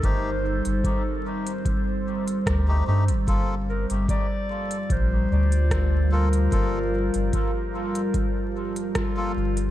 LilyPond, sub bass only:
\new Staff \with { instrumentName = "Sub bass" } { \clef bass \time 4/4 \key g \minor \tempo 4 = 74 g,,8. g,,16 r2 d,8 g,16 g,,16 | g,,8. g,,16 r4 bes,,8 d,4. | g,,8. g,,16 r2 r8 g,,8 | }